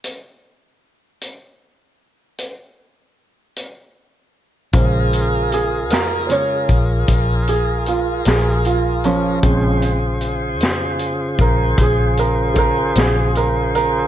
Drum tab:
HH |x--x--x--x--|xxxxxxxxxxxx|xxxxxxxxxxxx|
SD |------------|---o-----o--|---o-----o--|
BD |------------|o----oo-----|o----oo-o---|